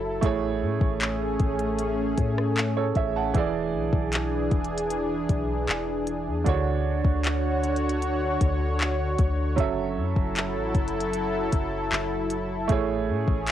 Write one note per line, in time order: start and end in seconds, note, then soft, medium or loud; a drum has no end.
0.00 0.20 F#1 loud
0.00 0.18 F#3 medium
0.00 0.19 F#3 medium
0.00 0.19 C#4 medium
0.00 0.19 E4 medium
0.00 0.19 A4 medium
0.00 0.20 E5 medium
0.21 0.64 A1 loud
0.21 2.91 A3 medium
0.21 3.31 A3 medium
0.21 3.31 C#4 medium
0.21 2.92 E4 medium
0.21 3.31 G#4 medium
0.21 2.53 G#4 medium
0.21 kick loud
0.21 closed hi-hat medium
0.26 2.54 C#5 medium
0.62 0.80 A2 loud
0.81 1.37 A1 loud
0.81 kick loud
1.01 clap loud
1.01 closed hi-hat medium
1.40 2.15 A1 loud
1.40 kick loud
1.40 closed hi-hat soft
1.59 closed hi-hat soft
1.79 closed hi-hat medium
2.18 2.93 A2 loud
2.18 kick medium
2.18 closed hi-hat medium
2.38 cross-stick medium
2.58 clap loud
2.77 2.95 A4 medium
2.77 2.95 C#5 medium
2.95 3.33 A1 loud
2.95 3.15 C#5 medium
2.95 3.15 E5 medium
2.95 kick loud
2.95 closed hi-hat medium
3.16 3.53 F#5 medium
3.16 3.53 A5 medium
3.34 3.75 E1 loud
3.34 6.42 E3 medium
3.34 6.43 E3 medium
3.34 6.43 D4 medium
3.34 6.42 E4 medium
3.34 6.43 G#4 medium
3.34 kick loud
3.34 closed hi-hat medium
3.38 6.44 D5 medium
3.74 3.92 B1 medium
3.93 4.49 B1 loud
3.93 kick loud
4.13 clap loud
4.13 closed hi-hat medium
4.51 5.26 E1 loud
4.51 kick loud
4.51 closed hi-hat soft
4.65 closed hi-hat soft
4.78 closed hi-hat medium
4.91 closed hi-hat medium
5.29 5.67 B1 loud
5.29 kick medium
5.29 closed hi-hat medium
5.69 6.29 E1 loud
5.69 clap loud
6.07 closed hi-hat medium
6.27 6.45 E2 medium
6.44 7.02 D2 loud
6.44 9.53 D3 medium
6.44 9.55 D3 medium
6.44 9.54 D4 medium
6.44 9.55 F#4 medium
6.44 9.54 F#4 medium
6.44 9.55 C#5 medium
6.44 kick loud
6.44 closed hi-hat medium
6.49 9.55 C#5 medium
7.05 8.37 D2 loud
7.05 kick medium
7.24 clap loud
7.24 closed hi-hat medium
7.63 closed hi-hat soft
7.76 closed hi-hat soft
7.89 closed hi-hat medium
8.02 closed hi-hat medium
8.41 9.16 D2 loud
8.41 kick medium
8.41 closed hi-hat medium
8.81 clap loud
9.19 9.56 D2 loud
9.19 kick loud
9.19 closed hi-hat medium
9.56 9.98 F#1 loud
9.56 12.65 F#3 medium
9.56 12.66 F#3 medium
9.56 12.65 C#4 medium
9.56 12.66 E4 medium
9.56 12.66 A4 medium
9.56 kick loud
9.56 closed hi-hat medium
9.60 12.67 E5 medium
9.97 10.15 F#2 loud
10.16 10.57 F#1 loud
10.16 kick medium
10.36 clap loud
10.36 closed hi-hat medium
10.55 10.74 A1 loud
10.75 11.50 F#1 loud
10.75 kick loud
10.75 closed hi-hat soft
10.88 closed hi-hat soft
11.01 closed hi-hat medium
11.13 closed hi-hat medium
11.52 11.90 F#1 loud
11.52 kick medium
11.52 closed hi-hat medium
11.92 12.67 F#1 loud
11.92 clap loud
12.30 closed hi-hat medium
12.68 13.10 A1 loud
12.68 13.52 A3 medium
12.68 13.52 C#4 medium
12.68 13.52 E4 medium
12.68 13.52 G#4 medium
12.68 kick loud
12.68 closed hi-hat medium
12.72 13.52 C#5 medium
13.09 13.27 A2 loud
13.28 13.52 A1 loud
13.28 kick medium
13.47 clap loud
13.47 closed hi-hat medium